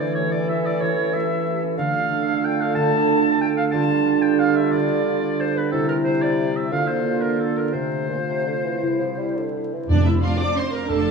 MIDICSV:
0, 0, Header, 1, 13, 480
1, 0, Start_track
1, 0, Key_signature, -1, "major"
1, 0, Tempo, 324500
1, 1194, Time_signature, 3, 2, 24, 8
1, 5992, Tempo, 332594
1, 10312, Tempo, 357782
1, 13672, Tempo, 333333
1, 15919, End_track
2, 0, Start_track
2, 0, Title_t, "Violin section"
2, 0, Program_c, 0, 48
2, 14655, Note_on_c, 0, 84, 45
2, 14770, Note_off_c, 0, 84, 0
2, 15130, Note_on_c, 0, 84, 49
2, 15246, Note_off_c, 0, 84, 0
2, 15919, End_track
3, 0, Start_track
3, 0, Title_t, "Violin section"
3, 0, Program_c, 1, 48
3, 14172, Note_on_c, 1, 74, 77
3, 14392, Note_off_c, 1, 74, 0
3, 14402, Note_on_c, 1, 76, 50
3, 14501, Note_off_c, 1, 76, 0
3, 14636, Note_on_c, 1, 77, 66
3, 14887, Note_off_c, 1, 77, 0
3, 14887, Note_on_c, 1, 86, 68
3, 15135, Note_off_c, 1, 86, 0
3, 15139, Note_on_c, 1, 84, 60
3, 15375, Note_off_c, 1, 84, 0
3, 15377, Note_on_c, 1, 82, 65
3, 15599, Note_on_c, 1, 81, 78
3, 15603, Note_off_c, 1, 82, 0
3, 15919, Note_off_c, 1, 81, 0
3, 15919, End_track
4, 0, Start_track
4, 0, Title_t, "Flute"
4, 0, Program_c, 2, 73
4, 0, Note_on_c, 2, 74, 62
4, 227, Note_off_c, 2, 74, 0
4, 239, Note_on_c, 2, 73, 63
4, 328, Note_off_c, 2, 73, 0
4, 480, Note_on_c, 2, 74, 57
4, 568, Note_off_c, 2, 74, 0
4, 736, Note_on_c, 2, 76, 71
4, 972, Note_on_c, 2, 74, 67
4, 994, Note_off_c, 2, 76, 0
4, 1196, Note_on_c, 2, 73, 78
4, 1219, Note_off_c, 2, 74, 0
4, 1675, Note_on_c, 2, 76, 72
4, 1697, Note_off_c, 2, 73, 0
4, 2407, Note_off_c, 2, 76, 0
4, 2629, Note_on_c, 2, 77, 81
4, 3607, Note_on_c, 2, 79, 79
4, 3629, Note_off_c, 2, 77, 0
4, 3841, Note_on_c, 2, 77, 73
4, 3863, Note_off_c, 2, 79, 0
4, 4066, Note_on_c, 2, 81, 84
4, 4088, Note_off_c, 2, 77, 0
4, 5047, Note_on_c, 2, 79, 83
4, 5070, Note_off_c, 2, 81, 0
4, 5276, Note_off_c, 2, 79, 0
4, 5285, Note_on_c, 2, 77, 74
4, 5507, Note_on_c, 2, 81, 88
4, 5530, Note_off_c, 2, 77, 0
4, 6232, Note_on_c, 2, 79, 68
4, 6253, Note_off_c, 2, 81, 0
4, 6481, Note_on_c, 2, 77, 77
4, 6502, Note_off_c, 2, 79, 0
4, 6725, Note_on_c, 2, 76, 73
4, 6747, Note_off_c, 2, 77, 0
4, 6954, Note_on_c, 2, 74, 82
4, 6975, Note_off_c, 2, 76, 0
4, 7613, Note_off_c, 2, 74, 0
4, 7936, Note_on_c, 2, 72, 73
4, 8023, Note_off_c, 2, 72, 0
4, 8157, Note_on_c, 2, 71, 56
4, 8244, Note_off_c, 2, 71, 0
4, 8388, Note_on_c, 2, 69, 76
4, 8621, Note_off_c, 2, 69, 0
4, 8633, Note_on_c, 2, 70, 60
4, 8719, Note_off_c, 2, 70, 0
4, 8870, Note_on_c, 2, 72, 69
4, 9142, Note_on_c, 2, 74, 60
4, 9164, Note_off_c, 2, 72, 0
4, 9616, Note_on_c, 2, 76, 63
4, 9638, Note_off_c, 2, 74, 0
4, 9844, Note_on_c, 2, 77, 76
4, 9865, Note_off_c, 2, 76, 0
4, 10058, Note_off_c, 2, 77, 0
4, 10067, Note_on_c, 2, 72, 59
4, 10542, Note_on_c, 2, 70, 48
4, 10562, Note_off_c, 2, 72, 0
4, 10780, Note_off_c, 2, 70, 0
4, 10795, Note_on_c, 2, 69, 54
4, 11024, Note_on_c, 2, 70, 49
4, 11044, Note_off_c, 2, 69, 0
4, 11261, Note_on_c, 2, 72, 59
4, 11281, Note_off_c, 2, 70, 0
4, 13684, Note_off_c, 2, 72, 0
4, 15919, End_track
5, 0, Start_track
5, 0, Title_t, "Oboe"
5, 0, Program_c, 3, 68
5, 0, Note_on_c, 3, 74, 71
5, 210, Note_off_c, 3, 74, 0
5, 219, Note_on_c, 3, 73, 79
5, 456, Note_off_c, 3, 73, 0
5, 465, Note_on_c, 3, 74, 80
5, 710, Note_off_c, 3, 74, 0
5, 719, Note_on_c, 3, 76, 81
5, 971, Note_on_c, 3, 74, 72
5, 993, Note_off_c, 3, 76, 0
5, 1191, Note_on_c, 3, 73, 81
5, 1214, Note_off_c, 3, 74, 0
5, 1676, Note_on_c, 3, 76, 78
5, 1698, Note_off_c, 3, 73, 0
5, 2408, Note_off_c, 3, 76, 0
5, 2629, Note_on_c, 3, 77, 94
5, 3619, Note_on_c, 3, 79, 84
5, 3641, Note_off_c, 3, 77, 0
5, 3860, Note_on_c, 3, 77, 85
5, 3882, Note_off_c, 3, 79, 0
5, 4058, Note_off_c, 3, 77, 0
5, 4067, Note_on_c, 3, 81, 103
5, 5026, Note_off_c, 3, 81, 0
5, 5050, Note_on_c, 3, 79, 86
5, 5156, Note_off_c, 3, 79, 0
5, 5280, Note_on_c, 3, 77, 88
5, 5384, Note_off_c, 3, 77, 0
5, 5491, Note_on_c, 3, 81, 106
5, 6237, Note_on_c, 3, 79, 84
5, 6259, Note_off_c, 3, 81, 0
5, 6481, Note_on_c, 3, 77, 85
5, 6503, Note_off_c, 3, 79, 0
5, 6719, Note_on_c, 3, 76, 85
5, 6741, Note_off_c, 3, 77, 0
5, 6941, Note_off_c, 3, 76, 0
5, 6949, Note_on_c, 3, 74, 91
5, 7942, Note_on_c, 3, 72, 88
5, 7964, Note_off_c, 3, 74, 0
5, 8191, Note_on_c, 3, 71, 73
5, 8213, Note_off_c, 3, 72, 0
5, 8386, Note_off_c, 3, 71, 0
5, 8395, Note_on_c, 3, 69, 85
5, 8624, Note_off_c, 3, 69, 0
5, 8634, Note_on_c, 3, 70, 73
5, 8743, Note_off_c, 3, 70, 0
5, 8873, Note_on_c, 3, 72, 81
5, 9116, Note_on_c, 3, 74, 77
5, 9138, Note_off_c, 3, 72, 0
5, 9616, Note_on_c, 3, 76, 73
5, 9637, Note_off_c, 3, 74, 0
5, 9841, Note_on_c, 3, 77, 89
5, 9862, Note_off_c, 3, 76, 0
5, 10062, Note_on_c, 3, 72, 75
5, 10084, Note_off_c, 3, 77, 0
5, 10534, Note_on_c, 3, 70, 58
5, 10554, Note_off_c, 3, 72, 0
5, 10785, Note_on_c, 3, 69, 62
5, 10805, Note_off_c, 3, 70, 0
5, 11016, Note_on_c, 3, 70, 57
5, 11036, Note_off_c, 3, 69, 0
5, 11216, Note_off_c, 3, 70, 0
5, 11224, Note_on_c, 3, 72, 70
5, 13616, Note_off_c, 3, 72, 0
5, 15919, End_track
6, 0, Start_track
6, 0, Title_t, "Viola section"
6, 0, Program_c, 4, 48
6, 14169, Note_on_c, 4, 62, 82
6, 14390, Note_off_c, 4, 62, 0
6, 14409, Note_on_c, 4, 64, 72
6, 14643, Note_on_c, 4, 65, 77
6, 14655, Note_off_c, 4, 64, 0
6, 14887, Note_on_c, 4, 74, 81
6, 14891, Note_off_c, 4, 65, 0
6, 15130, Note_on_c, 4, 72, 73
6, 15135, Note_off_c, 4, 74, 0
6, 15359, Note_on_c, 4, 70, 73
6, 15370, Note_off_c, 4, 72, 0
6, 15594, Note_off_c, 4, 70, 0
6, 15600, Note_on_c, 4, 69, 88
6, 15919, Note_off_c, 4, 69, 0
6, 15919, End_track
7, 0, Start_track
7, 0, Title_t, "Clarinet"
7, 0, Program_c, 5, 71
7, 0, Note_on_c, 5, 69, 65
7, 2576, Note_off_c, 5, 69, 0
7, 2644, Note_on_c, 5, 69, 71
7, 5529, Note_on_c, 5, 65, 74
7, 5552, Note_off_c, 5, 69, 0
7, 8400, Note_on_c, 5, 64, 63
7, 8422, Note_off_c, 5, 65, 0
7, 9593, Note_off_c, 5, 64, 0
7, 9839, Note_on_c, 5, 65, 62
7, 12252, Note_off_c, 5, 65, 0
7, 12690, Note_on_c, 5, 64, 49
7, 13868, Note_off_c, 5, 64, 0
7, 15919, End_track
8, 0, Start_track
8, 0, Title_t, "Harp"
8, 0, Program_c, 6, 46
8, 0, Note_on_c, 6, 52, 54
8, 0, Note_on_c, 6, 57, 45
8, 0, Note_on_c, 6, 69, 45
8, 1, Note_on_c, 6, 61, 40
8, 240, Note_on_c, 6, 67, 48
8, 473, Note_off_c, 6, 69, 0
8, 491, Note_on_c, 6, 69, 49
8, 717, Note_off_c, 6, 67, 0
8, 735, Note_on_c, 6, 67, 47
8, 951, Note_off_c, 6, 61, 0
8, 968, Note_on_c, 6, 61, 48
8, 1183, Note_off_c, 6, 52, 0
8, 1201, Note_on_c, 6, 52, 57
8, 1430, Note_on_c, 6, 64, 46
8, 1652, Note_off_c, 6, 67, 0
8, 1669, Note_on_c, 6, 67, 50
8, 1907, Note_off_c, 6, 69, 0
8, 1925, Note_on_c, 6, 69, 53
8, 2143, Note_off_c, 6, 67, 0
8, 2161, Note_on_c, 6, 67, 51
8, 2386, Note_off_c, 6, 61, 0
8, 2403, Note_on_c, 6, 61, 53
8, 2631, Note_on_c, 6, 50, 63
8, 2644, Note_off_c, 6, 67, 0
8, 2647, Note_off_c, 6, 61, 0
8, 2651, Note_off_c, 6, 52, 0
8, 2651, Note_off_c, 6, 64, 0
8, 2858, Note_on_c, 6, 62, 49
8, 3104, Note_on_c, 6, 65, 57
8, 3338, Note_off_c, 6, 69, 0
8, 3356, Note_on_c, 6, 69, 50
8, 3595, Note_off_c, 6, 65, 0
8, 3835, Note_off_c, 6, 62, 0
8, 3852, Note_on_c, 6, 62, 55
8, 4053, Note_off_c, 6, 50, 0
8, 4071, Note_on_c, 6, 50, 64
8, 4289, Note_off_c, 6, 57, 0
8, 4307, Note_on_c, 6, 57, 52
8, 4554, Note_on_c, 6, 65, 54
8, 4793, Note_off_c, 6, 69, 0
8, 4811, Note_on_c, 6, 69, 56
8, 5037, Note_off_c, 6, 65, 0
8, 5055, Note_on_c, 6, 65, 50
8, 5274, Note_off_c, 6, 62, 0
8, 5292, Note_on_c, 6, 62, 52
8, 5513, Note_off_c, 6, 50, 0
8, 5531, Note_on_c, 6, 50, 65
8, 5537, Note_off_c, 6, 57, 0
8, 5540, Note_off_c, 6, 69, 0
8, 5756, Note_on_c, 6, 59, 49
8, 5978, Note_off_c, 6, 65, 0
8, 5996, Note_on_c, 6, 65, 56
8, 6246, Note_on_c, 6, 67, 53
8, 6482, Note_off_c, 6, 65, 0
8, 6499, Note_on_c, 6, 65, 54
8, 6722, Note_off_c, 6, 59, 0
8, 6739, Note_on_c, 6, 59, 54
8, 6948, Note_off_c, 6, 50, 0
8, 6965, Note_on_c, 6, 50, 64
8, 7171, Note_off_c, 6, 62, 0
8, 7418, Note_off_c, 6, 65, 0
8, 7435, Note_on_c, 6, 65, 54
8, 7668, Note_off_c, 6, 67, 0
8, 7685, Note_on_c, 6, 67, 53
8, 7920, Note_off_c, 6, 65, 0
8, 7937, Note_on_c, 6, 65, 49
8, 8154, Note_off_c, 6, 59, 0
8, 8171, Note_on_c, 6, 59, 50
8, 8406, Note_on_c, 6, 48, 59
8, 8420, Note_off_c, 6, 59, 0
8, 8424, Note_off_c, 6, 65, 0
8, 8425, Note_off_c, 6, 50, 0
8, 8632, Note_on_c, 6, 60, 44
8, 8877, Note_on_c, 6, 64, 50
8, 9109, Note_off_c, 6, 67, 0
8, 9126, Note_on_c, 6, 67, 49
8, 9353, Note_off_c, 6, 64, 0
8, 9370, Note_on_c, 6, 64, 47
8, 9590, Note_off_c, 6, 60, 0
8, 9608, Note_on_c, 6, 60, 44
8, 9841, Note_on_c, 6, 50, 55
8, 9857, Note_off_c, 6, 60, 0
8, 9858, Note_off_c, 6, 64, 0
8, 9859, Note_off_c, 6, 67, 0
8, 9860, Note_off_c, 6, 48, 0
8, 10310, Note_on_c, 6, 65, 47
8, 10540, Note_on_c, 6, 70, 43
8, 10761, Note_off_c, 6, 65, 0
8, 10778, Note_on_c, 6, 65, 39
8, 11008, Note_on_c, 6, 58, 39
8, 11235, Note_on_c, 6, 48, 45
8, 11255, Note_off_c, 6, 58, 0
8, 11256, Note_off_c, 6, 70, 0
8, 11259, Note_off_c, 6, 50, 0
8, 11472, Note_on_c, 6, 60, 37
8, 11708, Note_off_c, 6, 65, 0
8, 11724, Note_on_c, 6, 65, 41
8, 11981, Note_on_c, 6, 69, 38
8, 12208, Note_off_c, 6, 65, 0
8, 12224, Note_on_c, 6, 65, 35
8, 12447, Note_off_c, 6, 60, 0
8, 12463, Note_on_c, 6, 60, 37
8, 12676, Note_off_c, 6, 48, 0
8, 12692, Note_on_c, 6, 48, 44
8, 12713, Note_off_c, 6, 65, 0
8, 12714, Note_off_c, 6, 69, 0
8, 12915, Note_off_c, 6, 60, 0
8, 12931, Note_on_c, 6, 60, 34
8, 13183, Note_on_c, 6, 64, 37
8, 13435, Note_on_c, 6, 67, 35
8, 13660, Note_off_c, 6, 64, 0
8, 13676, Note_on_c, 6, 64, 36
8, 13919, Note_off_c, 6, 60, 0
8, 13936, Note_on_c, 6, 60, 33
8, 14174, Note_on_c, 6, 41, 57
8, 14188, Note_off_c, 6, 48, 0
8, 14191, Note_off_c, 6, 64, 0
8, 14192, Note_off_c, 6, 67, 0
8, 14398, Note_off_c, 6, 60, 0
8, 14415, Note_on_c, 6, 60, 47
8, 14662, Note_on_c, 6, 65, 51
8, 14903, Note_on_c, 6, 72, 50
8, 15137, Note_on_c, 6, 69, 49
8, 15353, Note_off_c, 6, 65, 0
8, 15371, Note_on_c, 6, 65, 51
8, 15583, Note_off_c, 6, 41, 0
8, 15600, Note_on_c, 6, 41, 57
8, 15820, Note_off_c, 6, 60, 0
8, 15837, Note_on_c, 6, 60, 46
8, 15919, Note_off_c, 6, 41, 0
8, 15919, Note_off_c, 6, 60, 0
8, 15919, Note_off_c, 6, 65, 0
8, 15919, Note_off_c, 6, 69, 0
8, 15919, Note_off_c, 6, 72, 0
8, 15919, End_track
9, 0, Start_track
9, 0, Title_t, "Cello section"
9, 0, Program_c, 7, 48
9, 14645, Note_on_c, 7, 62, 66
9, 15103, Note_off_c, 7, 62, 0
9, 15143, Note_on_c, 7, 60, 58
9, 15598, Note_on_c, 7, 62, 63
9, 15603, Note_off_c, 7, 60, 0
9, 15919, Note_off_c, 7, 62, 0
9, 15919, End_track
10, 0, Start_track
10, 0, Title_t, "French horn section"
10, 0, Program_c, 8, 60
10, 261, Note_on_c, 8, 57, 46
10, 268, Note_on_c, 8, 67, 45
10, 433, Note_off_c, 8, 57, 0
10, 438, Note_off_c, 8, 67, 0
10, 747, Note_on_c, 8, 57, 51
10, 752, Note_on_c, 8, 67, 50
10, 912, Note_off_c, 8, 57, 0
10, 916, Note_off_c, 8, 67, 0
10, 1683, Note_on_c, 8, 67, 49
10, 1684, Note_on_c, 8, 57, 53
10, 1861, Note_off_c, 8, 57, 0
10, 1861, Note_off_c, 8, 67, 0
10, 2195, Note_on_c, 8, 57, 55
10, 2200, Note_on_c, 8, 67, 55
10, 2357, Note_off_c, 8, 57, 0
10, 2360, Note_off_c, 8, 67, 0
10, 2663, Note_on_c, 8, 65, 65
10, 2664, Note_on_c, 8, 57, 67
10, 5472, Note_off_c, 8, 57, 0
10, 5472, Note_off_c, 8, 65, 0
10, 5534, Note_on_c, 8, 65, 70
10, 5536, Note_on_c, 8, 55, 69
10, 8354, Note_off_c, 8, 65, 0
10, 8355, Note_off_c, 8, 55, 0
10, 8420, Note_on_c, 8, 55, 59
10, 8421, Note_on_c, 8, 64, 59
10, 9820, Note_off_c, 8, 55, 0
10, 9821, Note_off_c, 8, 64, 0
10, 9847, Note_on_c, 8, 65, 58
10, 9853, Note_on_c, 8, 58, 55
10, 11240, Note_on_c, 8, 57, 47
10, 11247, Note_off_c, 8, 58, 0
10, 12665, Note_off_c, 8, 57, 0
10, 12680, Note_on_c, 8, 64, 45
10, 12685, Note_on_c, 8, 55, 44
10, 12698, Note_off_c, 8, 65, 0
10, 13920, Note_off_c, 8, 64, 0
10, 13923, Note_off_c, 8, 55, 0
10, 15919, End_track
11, 0, Start_track
11, 0, Title_t, "Bassoon"
11, 0, Program_c, 10, 70
11, 0, Note_on_c, 10, 52, 71
11, 2618, Note_off_c, 10, 52, 0
11, 2627, Note_on_c, 10, 50, 80
11, 5265, Note_off_c, 10, 50, 0
11, 5516, Note_on_c, 10, 50, 79
11, 8345, Note_off_c, 10, 50, 0
11, 8395, Note_on_c, 10, 48, 69
11, 9808, Note_off_c, 10, 48, 0
11, 9833, Note_on_c, 10, 50, 60
11, 11232, Note_on_c, 10, 48, 48
11, 11252, Note_off_c, 10, 50, 0
11, 11668, Note_off_c, 10, 48, 0
11, 11716, Note_on_c, 10, 46, 54
11, 11833, Note_off_c, 10, 46, 0
11, 11972, Note_on_c, 10, 48, 40
11, 12208, Note_off_c, 10, 48, 0
11, 12216, Note_on_c, 10, 50, 51
11, 12325, Note_off_c, 10, 50, 0
11, 12456, Note_on_c, 10, 52, 54
11, 12925, Note_on_c, 10, 53, 49
11, 12945, Note_off_c, 10, 52, 0
11, 13179, Note_on_c, 10, 55, 56
11, 13199, Note_off_c, 10, 53, 0
11, 13429, Note_on_c, 10, 50, 48
11, 13449, Note_off_c, 10, 55, 0
11, 13931, Note_on_c, 10, 52, 43
11, 13952, Note_off_c, 10, 50, 0
11, 14172, Note_off_c, 10, 52, 0
11, 15919, End_track
12, 0, Start_track
12, 0, Title_t, "Timpani"
12, 0, Program_c, 11, 47
12, 14165, Note_on_c, 11, 41, 71
12, 14847, Note_off_c, 11, 41, 0
12, 15919, End_track
13, 0, Start_track
13, 0, Title_t, "Double bass section"
13, 0, Program_c, 12, 48
13, 14164, Note_on_c, 12, 29, 72
13, 14568, Note_off_c, 12, 29, 0
13, 15607, Note_on_c, 12, 29, 66
13, 15919, Note_off_c, 12, 29, 0
13, 15919, End_track
0, 0, End_of_file